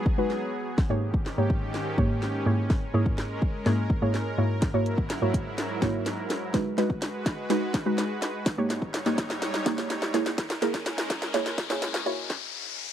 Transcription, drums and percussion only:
0.06 kick loud
0.30 snare medium
0.78 kick loud
0.78 snare medium
1.14 kick medium
1.26 snare medium
1.50 kick medium
1.74 snare medium
1.98 kick loud
2.22 snare medium
2.70 kick loud
2.70 snare medium
3.06 kick medium
3.18 snare medium
3.42 kick medium
3.66 snare medium
3.90 kick loud
4.14 snare medium
4.62 kick loud
4.62 snare medium
4.62 closed hi-hat loud
4.86 closed hi-hat medium
4.98 kick medium
5.10 snare medium
5.10 closed hi-hat medium
5.34 kick medium
5.34 closed hi-hat medium
5.58 snare medium
5.58 closed hi-hat medium
5.82 kick loud
5.82 snare medium
5.82 closed hi-hat medium
6.06 snare medium
6.06 closed hi-hat medium
6.30 snare medium
6.30 closed hi-hat medium
6.54 kick loud
6.54 snare medium
6.54 closed hi-hat loud
6.78 snare medium
6.78 closed hi-hat medium
6.90 kick medium
7.02 snare medium
7.02 closed hi-hat medium
7.26 kick medium
7.26 snare medium
7.26 closed hi-hat medium
7.50 snare medium
7.50 closed hi-hat medium
7.74 kick loud
7.74 snare medium
7.74 closed hi-hat medium
7.98 snare medium
7.98 closed hi-hat medium
8.22 snare medium
8.22 closed hi-hat medium
8.46 kick loud
8.46 snare medium
8.46 closed hi-hat loud
8.70 snare medium
8.70 closed hi-hat medium
8.82 kick medium
8.94 snare loud
8.94 closed hi-hat medium
9.06 snare loud
9.18 kick medium
9.18 snare loud
9.18 closed hi-hat medium
9.30 snare loud
9.42 snare loud
9.42 closed hi-hat medium
9.54 snare loud
9.66 kick loud
9.66 snare loud
9.66 closed hi-hat medium
9.78 snare loud
9.90 snare loud
9.90 closed hi-hat medium
10.02 snare loud
10.14 snare loud
10.14 closed hi-hat medium
10.26 snare loud
10.38 kick loud
10.38 snare loud
10.38 closed hi-hat loud
10.50 snare loud
10.62 snare loud
10.62 closed hi-hat medium
10.74 kick medium
10.74 snare loud
10.86 snare loud
10.86 closed hi-hat medium
10.98 snare loud
11.10 kick medium
11.10 snare loud
11.10 closed hi-hat medium
11.22 snare loud
11.34 snare loud
11.34 closed hi-hat medium
11.46 snare loud
11.58 kick loud
11.58 snare loud
11.58 closed hi-hat medium
11.70 snare loud
11.82 snare loud
11.82 closed hi-hat medium
11.94 snare loud
12.06 open hi-hat medium
12.30 kick loud
12.30 snare medium

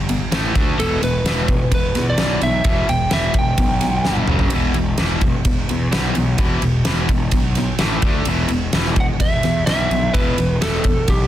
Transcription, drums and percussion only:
0.09 ride medium
0.32 snare loud
0.32 ride medium
0.55 kick loud
0.55 ride medium
0.80 ride medium
1.03 ride medium
1.26 snare loud
1.26 ride medium
1.48 kick medium
1.48 ride medium
1.72 kick medium
1.72 ride medium
1.95 snare soft
1.95 ride medium
2.18 snare loud
2.18 ride medium
2.41 ride medium
2.64 kick loud
2.64 ride medium
2.89 ride medium
3.11 snare loud
3.11 ride medium
3.34 kick medium
3.34 ride medium
3.58 kick medium
3.58 ride medium
3.81 snare soft
3.81 ride medium
4.05 snare medium
4.17 high tom medium
4.27 mid tom medium
4.39 floor tom medium
4.50 ride medium
4.74 ride medium
4.98 snare loud
4.98 ride medium
5.21 kick medium
5.21 ride medium
5.45 kick medium
5.45 ride medium
5.69 ride medium
5.93 snare medium
5.93 ride medium
6.15 ride medium
6.38 kick loud
6.38 ride medium
6.62 ride medium
6.85 snare loud
6.85 ride medium
7.09 kick medium
7.09 ride medium
7.31 kick medium
7.31 ride medium
7.55 snare soft
7.55 ride medium
7.79 snare loud
7.79 ride medium
8.02 kick medium
8.02 ride medium
8.25 ride medium
8.48 ride medium
8.73 snare loud
8.73 ride medium
8.84 snare soft
8.96 kick medium
8.96 ride medium
9.20 kick medium
9.20 ride medium
9.43 snare soft
9.43 ride medium
9.67 snare loud
9.67 ride medium
9.91 ride medium
10.14 kick loud
10.14 ride medium
10.38 ride medium
10.62 snare loud
10.62 ride medium
10.74 snare soft
10.84 kick medium
10.84 ride medium
11.08 kick medium
11.08 ride medium

